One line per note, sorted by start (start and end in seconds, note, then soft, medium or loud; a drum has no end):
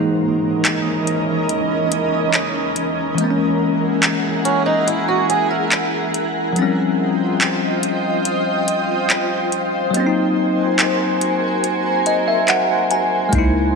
0.00 3.12 E3 medium
0.00 3.15 E3 medium
0.00 3.14 G#3 medium
0.00 3.15 A#3 medium
0.00 3.15 C#4 medium
0.00 3.17 D#4 medium
0.00 6.52 A#4 medium
0.00 3.15 D#5 medium
0.65 clap loud
0.65 closed hi-hat medium
1.07 closed hi-hat medium
1.49 closed hi-hat medium
1.92 closed hi-hat medium
2.34 clap loud
2.34 closed hi-hat medium
2.76 closed hi-hat medium
3.15 6.50 E3 medium
3.15 6.52 G#3 medium
3.15 6.53 E4 medium
3.15 6.53 G#4 medium
3.15 6.53 F#5 medium
3.15 closed hi-hat medium
3.21 6.54 A#3 medium
3.21 3.28 C4 medium
3.31 6.58 C#4 medium
4.03 clap loud
4.03 closed hi-hat medium
4.45 4.65 C#4 medium
4.45 closed hi-hat medium
4.66 4.86 D#4 medium
4.87 5.07 E4 medium
4.87 closed hi-hat medium
5.08 5.28 F#4 medium
5.29 5.50 G#4 medium
5.29 closed hi-hat medium
5.51 6.52 A#4 medium
5.72 clap loud
5.72 closed hi-hat medium
6.14 closed hi-hat medium
6.53 9.89 F3 medium
6.53 6.62 F#3 medium
6.53 13.28 C5 medium
6.53 9.91 D#5 medium
6.53 9.91 G5 medium
6.53 closed hi-hat medium
6.57 9.92 C4 medium
6.57 9.91 F4 medium
6.62 9.93 G3 medium
6.62 9.93 C#4 medium
7.41 clap loud
7.41 closed hi-hat medium
7.83 closed hi-hat medium
8.25 closed hi-hat medium
8.68 closed hi-hat medium
9.10 clap loud
9.10 closed hi-hat medium
9.52 closed hi-hat medium
9.91 13.27 F#3 medium
9.91 13.28 A#3 medium
9.91 closed hi-hat medium
9.95 13.30 C4 medium
9.95 13.29 F#4 medium
9.95 13.29 A#4 medium
9.95 13.29 G#5 medium
10.00 10.04 C#4 medium
10.07 13.34 D#4 medium
10.79 clap loud
10.79 closed hi-hat medium
11.21 closed hi-hat medium
11.64 closed hi-hat medium
12.06 12.26 D#5 medium
12.06 closed hi-hat medium
12.28 12.47 E5 medium
12.48 12.88 F#5 medium
12.48 clap loud
12.48 closed hi-hat medium
12.91 13.30 G#5 medium
12.91 closed hi-hat medium
13.29 13.75 C#2 loud
13.29 13.75 E3 medium
13.29 13.75 G#3 medium
13.29 13.75 A#3 medium
13.29 13.75 C#5 medium
13.29 13.75 D#5 medium
13.29 13.75 A#5 medium
13.29 kick loud
13.29 closed hi-hat medium
13.35 13.75 D#4 medium
13.35 13.75 E4 medium